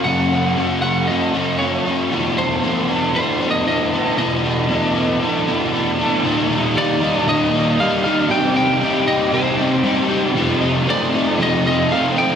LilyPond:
<<
  \new Staff \with { instrumentName = "Lead electric guitar" } { \time 4/4 \key f \mixolydian \tempo 4 = 116 ges''4. ges''8 ees''4 des''8. r16 | r8 c''4 r8 \tuplet 3/2 { c''4 ees''8 } ees''4 | ees''2.~ ees''8 r8 | r4 d''4 ees''4 f''8 f''8 |
g''8 g''4 ees''8 c''4. r8 | r4 d''4 ees''8 ees''8 f''8 g''8 | }
  \new Staff \with { instrumentName = "Overdriven electric guitar" } { \time 4/4 \key f \mixolydian <ges, des ges bes des' ges'>8 <ges bes des' ges'>8 <ges, des ges bes des' ges'>8 <ges bes des' ges'>8 <ges bes des' ges'>8 <ges, des ges bes des' ges'>8 <ges bes des' ges'>8 <ges bes des' ges'>8 | <f, c f bes c' ees'>8 <f bes c' ees'>8 <f, c f bes c' ees'>8 <f bes c' ees'>8 <f bes c' ees'>8 <f, c f bes c' ees'>8 <f bes c' ees'>8 <f bes c' ees'>8 | <f, c f bes c' ees'>8 <f bes c' ees'>8 <f, c f bes c' ees'>8 <f bes c' ees'>8 <f bes c' ees'>8 <f, c f bes c' ees'>8 <f bes c' ees'>8 <f bes c' ees'>8 | <ees, bes, ees g bes ees'>8 <ees g bes ees'>8 <ees g bes ees'>8 <ees g bes ees'>8 <ees, bes, ees g bes ees'>8 <ees g bes ees'>8 <ees g bes ees'>8 <ees g bes ees'>8 |
<c g c' ees' g'>8 <c' ees' g'>8 <g c' ees' g'>8 <c' ees' g'>8 <c g c' ees' g'>8 <c' ees' g'>8 <g c' ees' g'>8 <c' ees' g'>8 | <f, c f a c' ees'>8 <f a c' ees'>8 <f a c' ees'>8 <f a c' ees'>8 <f, c f a c' ees'>8 <f a c' ees'>8 <f a c' ees'>8 <f a c' ees'>8 | }
>>